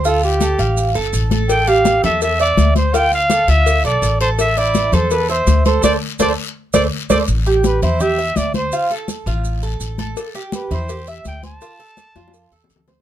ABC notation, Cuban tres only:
X:1
M:4/4
L:1/8
Q:1/4=166
K:Am
V:1 name="Cuban tres"
F2 A f2 A2 A- | A G2 A2 e2 c | F2 A F2 A2 A- | A E2 A2 e2 c |
[Acd] z [Acd] z2 [Acd] z [Acd] | z G2 E G e2 c | F A2 F2 A2 A- | A G2 E G e2 c |
F A2 F2 A2 c |]